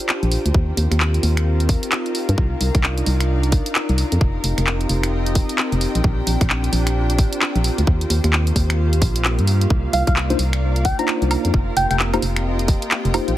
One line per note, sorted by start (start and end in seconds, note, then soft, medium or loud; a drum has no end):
0.00 0.53 D4 medium
0.00 0.54 D4 medium
0.00 0.53 F4 medium
0.00 2.34 G4 medium
0.00 1.29 A#4 medium
0.00 0.51 C5 medium
0.00 3.12 C5 medium
0.00 1.29 G5 medium
0.09 finger snap medium
0.09 clap loud
0.23 0.37 A#1 medium
0.23 closed hi-hat soft
0.32 open hi-hat medium
0.46 0.52 D2 medium
0.46 closed hi-hat medium
0.54 0.72 D#2 loud
0.54 4.95 D#3 medium
0.54 2.36 C4 medium
0.54 4.17 F4 medium
0.54 6.00 A#4 medium
0.54 kick loud
0.77 0.87 D#2 loud
0.77 open hi-hat loud
0.91 1.19 D#2 loud
0.91 finger snap soft
0.91 closed hi-hat medium
0.97 3.12 G4 medium
0.97 clap loud
1.14 closed hi-hat soft
1.23 1.76 D#2 medium
1.23 open hi-hat medium
1.37 4.96 F5 medium
1.37 finger snap medium
1.37 closed hi-hat medium
1.60 closed hi-hat soft
1.69 kick loud
1.69 open hi-hat loud
1.83 closed hi-hat medium
1.92 finger snap medium
1.92 clap loud
2.06 closed hi-hat soft
2.15 open hi-hat medium
2.29 2.35 G2 loud
2.29 closed hi-hat medium
2.38 2.55 C2 loud
2.38 4.19 D4 medium
2.38 4.19 D#4 medium
2.38 kick loud
2.61 2.71 C2 medium
2.61 open hi-hat loud
2.75 3.02 C2 loud
2.75 4.21 D5 medium
2.75 finger snap soft
2.75 kick loud
2.75 closed hi-hat medium
2.84 clap loud
2.97 8.62 A#4 medium
2.97 closed hi-hat medium
3.06 3.60 C2 medium
3.06 open hi-hat medium
3.20 finger snap medium
3.20 closed hi-hat medium
3.43 closed hi-hat soft
3.52 kick loud
3.52 open hi-hat loud
3.66 closed hi-hat medium
3.75 finger snap medium
3.75 clap loud
3.89 4.04 C2 medium
3.89 closed hi-hat soft
3.98 open hi-hat medium
4.12 4.18 F2 medium
4.12 closed hi-hat medium
4.21 4.39 F1 medium
4.21 9.66 C4 medium
4.21 6.02 D#4 medium
4.21 6.72 F4 medium
4.21 9.66 G4 medium
4.21 kick loud
4.44 4.54 F1 medium
4.44 open hi-hat loud
4.58 4.86 F1 loud
4.58 finger snap soft
4.58 closed hi-hat medium
4.67 clap loud
4.81 closed hi-hat medium
4.89 5.43 F1 medium
4.89 open hi-hat medium
5.03 6.04 D#5 medium
5.03 8.62 G5 medium
5.03 finger snap medium
5.03 closed hi-hat medium
5.26 closed hi-hat medium
5.35 kick loud
5.35 open hi-hat loud
5.49 closed hi-hat medium
5.58 finger snap medium
5.58 clap loud
5.72 5.87 F1 medium
5.72 closed hi-hat soft
5.81 open hi-hat medium
5.95 6.01 A#1 medium
5.95 closed hi-hat medium
6.04 6.22 A#1 loud
6.04 7.87 D4 medium
6.04 7.85 D4 medium
6.04 11.50 F4 medium
6.04 kick loud
6.27 6.37 A#1 medium
6.27 open hi-hat loud
6.41 6.69 A#1 loud
6.41 10.45 C5 medium
6.41 finger snap soft
6.41 kick loud
6.41 closed hi-hat medium
6.50 clap loud
6.64 closed hi-hat medium
6.73 7.26 A#1 medium
6.73 open hi-hat medium
6.87 finger snap medium
6.87 closed hi-hat medium
7.10 closed hi-hat medium
7.18 kick loud
7.18 open hi-hat loud
7.33 closed hi-hat medium
7.42 finger snap medium
7.42 clap loud
7.55 7.70 A#1 medium
7.55 closed hi-hat soft
7.64 open hi-hat medium
7.78 7.85 D2 medium
7.78 closed hi-hat medium
7.87 8.05 D#2 loud
7.87 12.28 D#3 medium
7.87 13.33 A#3 medium
7.87 kick loud
8.01 closed hi-hat soft
8.10 8.20 D#2 medium
8.10 open hi-hat loud
8.24 8.52 D#2 loud
8.24 finger snap soft
8.24 closed hi-hat medium
8.33 clap loud
8.44 10.45 G4 medium
8.44 closed hi-hat medium
8.55 9.01 D#2 loud
8.55 12.28 F5 medium
8.55 kick medium
8.55 open hi-hat medium
8.70 finger snap medium
8.70 closed hi-hat medium
8.93 closed hi-hat medium
9.02 9.40 A#1 medium
9.02 kick loud
9.02 open hi-hat loud
9.16 closed hi-hat medium
9.25 finger snap medium
9.25 clap loud
9.39 9.66 G2 loud
9.39 closed hi-hat soft
9.47 open hi-hat medium
9.61 closed hi-hat medium
9.70 9.88 C2 loud
9.70 11.52 D5 medium
9.70 kick loud
9.93 10.03 C2 medium
9.93 10.02 F5 medium
9.93 open hi-hat loud
10.07 10.35 C2 loud
10.07 13.38 A#4 medium
10.07 10.13 F5 medium
10.07 finger snap soft
10.07 kick loud
10.07 closed hi-hat medium
10.16 clap loud
10.30 10.38 A#3 medium
10.30 10.38 D4 medium
10.30 10.38 D#4 medium
10.30 10.38 F4 medium
10.30 10.38 C5 medium
10.30 closed hi-hat medium
10.39 10.92 C2 medium
10.39 open hi-hat loud
10.53 11.54 D5 medium
10.53 finger snap medium
10.53 closed hi-hat medium
10.76 closed hi-hat soft
10.85 10.96 G5 medium
10.85 kick loud
10.85 open hi-hat loud
10.99 11.53 A#3 medium
10.99 11.53 D4 medium
10.99 11.53 D#4 medium
10.99 11.53 F4 medium
10.99 11.53 C5 medium
10.99 11.11 A#5 medium
10.99 closed hi-hat medium
11.08 finger snap medium
11.08 clap loud
11.22 11.37 C2 medium
11.22 closed hi-hat soft
11.31 open hi-hat medium
11.31 high woodblock medium
11.45 11.51 F2 medium
11.45 closed hi-hat medium
11.54 11.71 F1 loud
11.54 13.35 C4 medium
11.54 13.38 F4 medium
11.54 13.38 G4 medium
11.54 kick loud
11.77 11.87 F1 loud
11.77 11.86 G5 medium
11.77 open hi-hat loud
11.90 12.18 F1 loud
11.90 11.96 G5 medium
11.90 finger snap soft
11.90 closed hi-hat medium
12.00 clap loud
12.13 12.22 A#3 medium
12.13 12.22 D#4 medium
12.13 12.22 F4 medium
12.13 12.22 G4 medium
12.13 12.22 C5 loud
12.13 closed hi-hat medium
12.13 high woodblock medium
12.22 12.76 F1 medium
12.22 open hi-hat loud
12.36 13.37 D#5 medium
12.36 13.38 G5 medium
12.36 finger snap medium
12.36 closed hi-hat medium
12.59 closed hi-hat soft
12.68 kick loud
12.68 open hi-hat loud
12.82 closed hi-hat medium
12.91 finger snap medium
12.91 clap loud
13.05 13.20 F1 medium
13.05 closed hi-hat soft
13.14 13.32 A#3 medium
13.14 13.32 D#4 medium
13.14 13.32 F4 medium
13.14 13.32 G4 medium
13.14 13.32 C5 medium
13.14 open hi-hat medium
13.14 high woodblock medium
13.28 13.34 A#1 medium
13.28 closed hi-hat medium